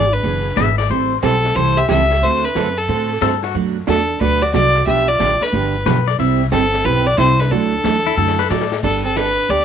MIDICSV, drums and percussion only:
0, 0, Header, 1, 2, 480
1, 0, Start_track
1, 0, Key_signature, 1, "major"
1, 0, Tempo, 330579
1, 1307, Time_signature, 4, 2, 24, 8
1, 14009, End_track
2, 0, Start_track
2, 0, Title_t, "Drums"
2, 345, Note_on_c, 9, 25, 48
2, 828, Note_on_c, 9, 38, 73
2, 828, Note_on_c, 9, 44, 67
2, 973, Note_off_c, 9, 38, 0
2, 973, Note_off_c, 9, 44, 0
2, 1133, Note_on_c, 9, 38, 39
2, 1278, Note_off_c, 9, 38, 0
2, 1308, Note_off_c, 9, 25, 0
2, 1308, Note_on_c, 9, 25, 41
2, 1785, Note_on_c, 9, 38, 63
2, 1785, Note_on_c, 9, 44, 54
2, 1930, Note_off_c, 9, 38, 0
2, 1930, Note_off_c, 9, 44, 0
2, 2093, Note_on_c, 9, 38, 52
2, 2238, Note_off_c, 9, 38, 0
2, 2263, Note_off_c, 9, 25, 0
2, 2263, Note_on_c, 9, 25, 52
2, 2750, Note_on_c, 9, 38, 72
2, 2750, Note_on_c, 9, 44, 59
2, 2895, Note_off_c, 9, 38, 0
2, 2895, Note_off_c, 9, 44, 0
2, 3052, Note_on_c, 9, 38, 40
2, 3197, Note_off_c, 9, 38, 0
2, 3225, Note_off_c, 9, 25, 0
2, 3225, Note_on_c, 9, 25, 50
2, 3704, Note_on_c, 9, 38, 62
2, 3704, Note_on_c, 9, 44, 62
2, 3849, Note_off_c, 9, 38, 0
2, 3849, Note_off_c, 9, 44, 0
2, 4182, Note_off_c, 9, 25, 0
2, 4182, Note_on_c, 9, 25, 52
2, 4665, Note_on_c, 9, 38, 73
2, 4665, Note_on_c, 9, 44, 62
2, 4810, Note_off_c, 9, 38, 0
2, 4810, Note_off_c, 9, 44, 0
2, 4971, Note_on_c, 9, 38, 40
2, 5116, Note_off_c, 9, 38, 0
2, 5145, Note_off_c, 9, 25, 0
2, 5145, Note_on_c, 9, 25, 49
2, 5627, Note_on_c, 9, 38, 69
2, 5627, Note_on_c, 9, 44, 54
2, 5772, Note_off_c, 9, 38, 0
2, 5772, Note_off_c, 9, 44, 0
2, 6108, Note_off_c, 9, 25, 0
2, 6108, Note_on_c, 9, 25, 43
2, 6590, Note_on_c, 9, 38, 73
2, 6590, Note_on_c, 9, 44, 58
2, 6735, Note_off_c, 9, 38, 0
2, 6735, Note_off_c, 9, 44, 0
2, 6899, Note_on_c, 9, 38, 42
2, 7044, Note_off_c, 9, 38, 0
2, 7068, Note_off_c, 9, 25, 0
2, 7068, Note_on_c, 9, 25, 41
2, 7547, Note_on_c, 9, 38, 64
2, 7547, Note_on_c, 9, 44, 45
2, 7692, Note_off_c, 9, 38, 0
2, 7692, Note_off_c, 9, 44, 0
2, 7856, Note_on_c, 9, 38, 40
2, 8001, Note_off_c, 9, 38, 0
2, 8026, Note_off_c, 9, 25, 0
2, 8026, Note_on_c, 9, 25, 43
2, 8509, Note_on_c, 9, 38, 75
2, 8509, Note_on_c, 9, 44, 58
2, 8654, Note_off_c, 9, 38, 0
2, 8654, Note_off_c, 9, 44, 0
2, 8820, Note_on_c, 9, 38, 38
2, 8965, Note_off_c, 9, 38, 0
2, 8991, Note_off_c, 9, 25, 0
2, 8991, Note_on_c, 9, 25, 43
2, 9470, Note_on_c, 9, 38, 63
2, 9470, Note_on_c, 9, 44, 59
2, 9615, Note_off_c, 9, 38, 0
2, 9615, Note_off_c, 9, 44, 0
2, 9777, Note_on_c, 9, 38, 41
2, 9922, Note_off_c, 9, 38, 0
2, 9944, Note_off_c, 9, 25, 0
2, 9944, Note_on_c, 9, 25, 45
2, 10426, Note_on_c, 9, 38, 68
2, 10426, Note_on_c, 9, 44, 58
2, 10571, Note_off_c, 9, 38, 0
2, 10571, Note_off_c, 9, 44, 0
2, 10732, Note_on_c, 9, 38, 37
2, 10878, Note_off_c, 9, 38, 0
2, 10908, Note_off_c, 9, 25, 0
2, 10908, Note_on_c, 9, 25, 45
2, 11383, Note_on_c, 9, 38, 62
2, 11383, Note_on_c, 9, 44, 55
2, 11528, Note_off_c, 9, 38, 0
2, 11528, Note_off_c, 9, 44, 0
2, 12021, Note_on_c, 9, 38, 56
2, 12166, Note_off_c, 9, 38, 0
2, 12180, Note_on_c, 9, 38, 72
2, 12325, Note_off_c, 9, 38, 0
2, 12340, Note_on_c, 9, 38, 70
2, 12340, Note_on_c, 9, 44, 65
2, 12486, Note_off_c, 9, 38, 0
2, 12486, Note_off_c, 9, 44, 0
2, 12500, Note_on_c, 9, 38, 75
2, 12645, Note_off_c, 9, 38, 0
2, 12657, Note_on_c, 9, 38, 84
2, 12802, Note_off_c, 9, 38, 0
2, 12822, Note_off_c, 9, 25, 0
2, 12822, Note_on_c, 9, 25, 42
2, 12822, Note_on_c, 9, 49, 67
2, 12823, Note_on_c, 9, 36, 68
2, 12968, Note_off_c, 9, 49, 0
2, 12969, Note_off_c, 9, 36, 0
2, 13303, Note_on_c, 9, 38, 62
2, 13303, Note_on_c, 9, 44, 50
2, 13449, Note_off_c, 9, 38, 0
2, 13449, Note_off_c, 9, 44, 0
2, 13784, Note_off_c, 9, 25, 0
2, 13784, Note_on_c, 9, 25, 42
2, 14009, Note_off_c, 9, 25, 0
2, 14009, End_track
0, 0, End_of_file